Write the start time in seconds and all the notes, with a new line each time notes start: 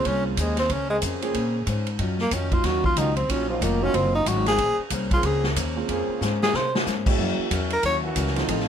Already playing: G#3 A#3 C4 C#4 F4
0.04 C2 A#3 C#4 G#4 C5, kick, ride
0.26 F3
0.37 D#2 G#3 A#3 C#4 G#4 C5, kick, hi-hat pedal, ride
0.57 C4, snare, ride
0.69 C#2 A#3 C#4 G#4 C5, kick, ride
0.90 C#3 G#3 A#3 C4 G#4
1.01 F2 A#3 C#4 G#4 C5, kick, hi-hat pedal, ride
1.21 C#3 G#3 A#3 C4 C#4 F4 G#4, ride
1.33 A#2 A#3 C#4 G#4 C5, kick, ride
1.66 G#2 A#3 C#4 G#4 C5, kick, hi-hat pedal, ride
1.87 ride
1.98 F#2 D#3 F#3 C#4 F4, kick, ride
2.19 A#3, snare
2.31 F2 D#3 F#3 C#4 F4, kick, hi-hat pedal, ride
2.51 F#3 A#3 C#4 D#4 F4, kick, ride
2.64 D#2 D#3 F#3 C#4 F4 F#4, kick, snare, ride
2.84 F4, kick
2.96 C#2 D#3 F#3 C#4 D#4 F4, kick, hi-hat pedal, ride
3.16 C4, ride
3.28 A#1 D#3 F#3 A#3 C#4 D#4 F4, kick, ride
3.49 D#3 F3 F#3 C#4 F4
3.61 F1 D#3 F#3 A#3 C#4 F4, kick, hi-hat pedal, ride
3.81 D#3 F#3 A#3 C#4 D#4 F4 F#4
3.93 F#1 D#3 F#3 C4 C#4 F4, kick, ride
4.15 D#4
4.25 G#1 D#3 F#3 C#4 F4 F#4, kick, hi-hat pedal, ride
4.46 G#4, snare, ride
4.57 A#1 A#3 C#4 G#4 C5, kick, ride
4.78 muted upright bass stroke
4.90 C2 A#3 C#4 G#4 C5, kick, hi-hat pedal, ride
5.10 C#3 A#3 C4 F4 G#4, kick, ride
5.23 C#2 A#3 C#4 G#4 C5, kick, ride
5.44 snare
5.56 D#2 A#3 C#4 G#4 C5, kick, hi-hat pedal, ride
5.76 G#3 A#3 C4 C#4 F4
5.88 F2 C#3 A#3 C4 C#4 G#4 C5, kick, ride
6.08 muted upright bass stroke
6.21 G#2 A#3 C#4 G#4 C5, snare, hi-hat pedal
6.43 G#4, snare
6.53 C3 A#3 C#4 G#4 C5, snare
6.75 snare
6.85 G#2 A#3 C#4 G#4 C5, snare, hi-hat pedal
7.06 G#3 A#3 C#4 E4 F#4, kick, crash
7.17 F#2 E3 F#3 A#3 C#4 E4 F#4 A#4, kick
7.38 muted upright bass stroke
7.50 E2 F#3 C#4 E4 A#4, kick, hi-hat pedal, ride
7.70 A#4, ride
7.83 D#2 F#3 C#4 E4 A#4 C#5, kick, ride
8.02 E3 A#3 C#4 F#4
8.15 C#2 F#3 C#4 E4 A#4, kick, hi-hat pedal, ride
8.27 snare
8.36 F3 A3 C4 D#4 F4, snare, ride
8.47 A1 D#3 F3 A3 C4 D#4 F4 A4, kick, ride
8.59 snare